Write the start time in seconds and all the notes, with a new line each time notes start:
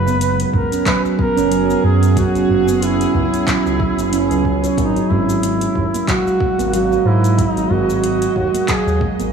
Already playing: F#1 F#3 C#4 G#4 B4
0.07 B3, shaker
0.21 closed hi-hat, shaker
0.40 closed hi-hat, shaker
0.53 C#2 A#4, kick, udu
0.72 C#4, closed hi-hat, shaker
0.86 F#3 B4, kick, clap, closed hi-hat, shaker
1.05 shaker
1.19 B3 A#4, kick
1.37 F#1 C#4, closed hi-hat, shaker
1.51 F#3, closed hi-hat, shaker
1.69 B3, shaker
1.84 F#2 G#4
2.03 closed hi-hat, shaker
2.16 F#3 F#4, kick, closed hi-hat, shaker
2.35 F#1, closed hi-hat, shaker
2.49 F#1, udu
2.68 B3, shaker
2.82 E4, closed hi-hat, shaker
3.01 closed hi-hat, shaker
3.15 C#2, kick, udu
3.33 C#4, closed hi-hat, shaker
3.47 F#3, kick, clap, closed hi-hat, shaker
3.66 C#2, shaker
3.80 F#3, kick
3.98 F#1 E4, closed hi-hat, shaker
4.13 C#4, closed hi-hat, shaker
4.31 C#2 F#3, closed hi-hat, shaker
4.45 kick
4.64 C#5, closed hi-hat, shaker
4.77 G#1 F#3 G#3 D#4 A#4 D#5, kick, closed hi-hat, shaker
4.96 closed hi-hat, shaker
5.10 G#1 G#3 E4, udu
5.29 shaker
5.43 closed hi-hat, shaker
5.61 closed hi-hat, shaker
5.75 D#2, kick, udu
5.94 A#3, closed hi-hat, shaker
6.08 F#3 F#4, kick, clap, closed hi-hat, shaker
6.27 shaker
6.40 G#3, kick
6.59 G#1 A#3, closed hi-hat, shaker
6.73 F#3 F#4, closed hi-hat, shaker
6.91 G#3, shaker
7.05 G#2 E4
7.24 closed hi-hat, shaker
7.38 F#3 D#4, kick, closed hi-hat, shaker
7.56 G#1, closed hi-hat, shaker
7.70 G#1 G#3 F#4, udu
7.90 shaker
8.04 closed hi-hat, shaker
8.22 closed hi-hat, shaker
8.36 D#2, kick, udu
8.54 A#3, closed hi-hat, shaker
8.68 F#3 G#4, kick, clap, closed hi-hat, shaker
8.87 D#2, shaker
9.01 G#3, kick
9.19 G#1 A#3, closed hi-hat, shaker